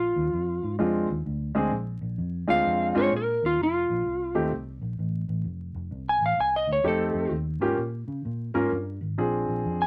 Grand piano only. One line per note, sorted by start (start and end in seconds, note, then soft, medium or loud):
0.79 1.06 G#3 medium
0.79 1.06 C4 medium
0.79 1.06 D4 medium
0.79 1.06 F4 medium
1.55 1.70 G#3 medium
1.55 1.70 C4 medium
1.55 1.70 D4 medium
1.55 1.71 G#4 medium
2.48 2.92 G#3 medium
2.48 2.92 C4 medium
2.48 2.92 D4 medium
2.48 2.92 F4 medium
2.95 3.10 G#3 medium
2.95 3.10 C4 medium
2.95 3.10 D4 medium
2.95 3.10 F4 medium
4.35 4.50 A3 medium
4.35 4.50 C4 medium
4.35 4.50 D#4 medium
4.35 4.50 G4 medium
6.84 7.31 A3 medium
6.84 7.31 C4 medium
6.84 7.31 D#4 medium
6.84 7.31 G4 medium
7.61 7.76 A#3 medium
7.61 7.76 C#4 medium
7.61 7.76 F4 medium
7.61 7.77 G4 medium
8.54 8.69 A#3 medium
8.54 8.70 C#4 medium
8.54 8.70 F4 medium
8.54 8.70 A#4 medium
9.18 9.87 C4 medium
9.18 9.87 D4 soft
9.18 9.87 F4 soft
9.18 9.87 G#4 medium